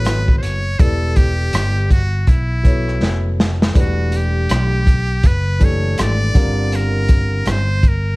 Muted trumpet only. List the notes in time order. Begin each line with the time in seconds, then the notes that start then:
Already playing: B4
0.38 C5 C#5
0.80 A4
1.16 G4
1.92 F#4
2.28 E4
3.80 F#4
4.16 G4
5.26 B4
5.64 C#5
6.01 D5
6.76 A#4
7.50 C5
7.88 A#4